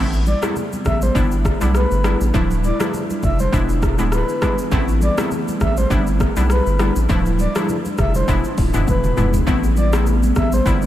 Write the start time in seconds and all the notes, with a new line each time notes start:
Already playing: A1 C3 A3 B3 C4 E4
0.13 shaker
0.26 D5, high conga, shaker
0.42 A3 B3 C4 E4, cross-stick, high conga, shaker
0.56 low conga, shaker
0.73 high conga, shaker
0.85 A1 E5, kick, cross-stick, low conga, shaker
1.02 C5, high conga, shaker
1.15 G1 G3 B3 D4 E4 B4, kick, low conga, shaker
1.32 shaker
1.45 kick, cross-stick, shaker
1.61 B1 G3 B3 D4 E4, shaker
1.75 B4, cross-stick, shaker
1.91 G1, shaker
2.04 G3 B3 D4 E4, cross-stick, high conga, shaker
2.21 A1, shaker
2.34 D1 D3 F3 A3 D4 E4 F4, kick, low conga, shaker
2.51 shaker
2.64 D5, high conga, shaker
2.80 F3 A3 D4 E4, cross-stick, high conga, shaker
2.94 low conga, shaker
3.10 high conga, shaker
3.23 F1 E5, kick, low conga, shaker
3.39 C5, high conga, shaker
3.52 E1 E3 G#3 B3 D4 E4 G#4, kick, low conga, shaker
3.69 shaker
3.82 kick, cross-stick, shaker
3.98 D1 G#3 B3 D4 E4, shaker
4.12 B4, cross-stick, shaker
4.29 shaker
4.42 G#3 B3 D4 E4, kick, cross-stick, high conga, shaker
4.58 shaker
4.71 A1 A3 B3 C4 E4, kick, low conga, shaker
4.88 shaker
5.01 D5, high conga, shaker
5.17 A3 B3 C4 E4, cross-stick, high conga, shaker
5.31 low conga, shaker
5.48 high conga, shaker
5.60 A1 E5, kick, cross-stick, low conga, shaker
5.77 C5, high conga, shaker
5.90 G1 G3 B3 D4 E4 B4, kick, low conga, shaker
6.07 shaker
6.20 kick, cross-stick, shaker
6.36 B1 G3 B3 D4 E4, shaker
6.50 B4, cross-stick, shaker
6.66 G1, shaker
6.79 G3 B3 D4 E4, cross-stick, high conga, shaker
6.96 A1, shaker
7.09 D1 D3 F3 A3 D4 E4 F4, kick, low conga, shaker
7.26 shaker
7.39 D5, high conga, shaker
7.55 F3 A3 D4 E4, cross-stick, high conga, shaker
7.69 low conga, shaker
7.85 high conga, shaker
7.98 F1 E5, kick, cross-stick, low conga, shaker
8.14 C5, high conga, shaker
8.28 E1 E3 G#3 B3 D4 E4 G#4, kick, low conga, shaker
8.44 shaker
8.58 D1, kick, open hi-hat, shaker
8.74 E1 G#3 B3 D4 E4, mid tom, shaker
8.88 E1 B4, kick, high tom, shaker
9.04 mid tom, shaker
9.17 E1 G#3 B3 D4 E4, mid tom, high conga, shaker
9.34 floor tom, shaker
9.46 A1 A3 B3 C4 E4, kick, low conga, shaker
9.64 shaker
9.77 D5, high conga, shaker
9.93 A3 B3 C4 E4, cross-stick, high conga, shaker
10.07 low conga, shaker
10.23 high conga, shaker
10.36 A1 E5, kick, cross-stick, low conga, shaker
10.52 C5, high conga, shaker
10.66 G1 G3 B3 D4 E4 B4, kick, low conga, shaker
10.82 shaker